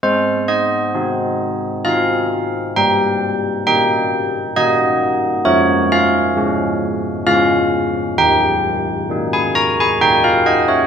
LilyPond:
<<
  \new Staff \with { instrumentName = "Church bells" } { \time 3/4 \key aes \major \tempo 4 = 66 c''8 ees''4. f''4 | g''4 g''4 ees''4 | des''8 f''4. f''4 | g''4~ g''16 aes''16 bes''16 aes''16 g''16 f''16 ees''16 des''16 | }
  \new Staff \with { instrumentName = "Church bells" } { \time 3/4 \key aes \major aes4 <c' ees'>4 <c' ees'>4 | g4 <bes ees'>4 <bes ees'>4 | f4 <aes des'>4 <aes des'>4 | ees4 <bes ees'>4 <bes ees'>4 | }
>>